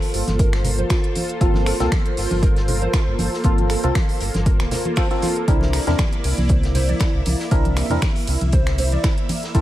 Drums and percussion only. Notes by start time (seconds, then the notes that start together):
0.02 open hi-hat
0.14 closed hi-hat, open hi-hat
0.27 snare, closed hi-hat, high conga
0.39 kick, closed hi-hat
0.53 finger snap, snare, closed hi-hat
0.64 closed hi-hat, open hi-hat, low conga
0.78 closed hi-hat, high conga
0.90 finger snap, kick, snare, closed hi-hat
1.04 closed hi-hat
1.15 closed hi-hat, open hi-hat, high conga
1.29 closed hi-hat
1.41 kick, closed hi-hat
1.54 snare, high conga
1.66 finger snap, closed hi-hat, open hi-hat
1.80 snare, closed hi-hat, low conga
1.92 finger snap, kick, snare, closed hi-hat, high conga
2.06 closed hi-hat
2.17 open hi-hat
2.31 closed hi-hat, high conga
2.43 kick, closed hi-hat
2.56 snare, closed hi-hat
2.68 closed hi-hat, open hi-hat, low conga
2.82 closed hi-hat, high conga
2.93 finger snap, kick, snare, closed hi-hat
3.19 closed hi-hat, open hi-hat, high conga
3.34 snare
3.44 kick, closed hi-hat
3.58 closed hi-hat, high conga
3.70 finger snap, closed hi-hat, open hi-hat
3.84 closed hi-hat, low conga
3.95 finger snap, kick, snare, closed hi-hat, high conga
4.09 open hi-hat
4.21 closed hi-hat, open hi-hat
4.34 snare, closed hi-hat, high conga
4.46 kick, closed hi-hat
4.60 finger snap, snare, closed hi-hat
4.71 snare, closed hi-hat, open hi-hat, low conga
4.85 closed hi-hat, high conga
4.96 finger snap, kick, closed hi-hat, open hi-hat
5.11 closed hi-hat
5.22 snare, closed hi-hat, open hi-hat, high conga
5.36 closed hi-hat
5.48 kick, closed hi-hat
5.61 snare, high conga
5.73 finger snap, closed hi-hat, open hi-hat, ride
5.87 snare, closed hi-hat, low conga
5.99 finger snap, kick, snare, closed hi-hat, high conga
6.13 closed hi-hat
6.24 open hi-hat, ride
6.38 closed hi-hat, high conga
6.49 kick, closed hi-hat
6.63 snare, closed hi-hat
6.75 closed hi-hat, open hi-hat, ride, low conga
6.89 closed hi-hat, high conga
7.00 finger snap, kick, snare, closed hi-hat
7.25 closed hi-hat, open hi-hat, ride, high conga
7.39 snare
7.51 kick, closed hi-hat
7.65 closed hi-hat, high conga
7.76 finger snap, closed hi-hat, open hi-hat, ride
7.90 closed hi-hat, low conga
8.02 finger snap, kick, snare, closed hi-hat, high conga
8.16 open hi-hat
8.27 closed hi-hat, open hi-hat, ride
8.41 closed hi-hat, high conga
8.52 kick, closed hi-hat
8.67 finger snap, snare, closed hi-hat
8.78 closed hi-hat, open hi-hat, ride, low conga
8.92 closed hi-hat, high conga
9.04 finger snap, kick, snare, closed hi-hat
9.18 closed hi-hat
9.29 closed hi-hat, open hi-hat, ride, high conga
9.43 snare, closed hi-hat
9.55 kick, closed hi-hat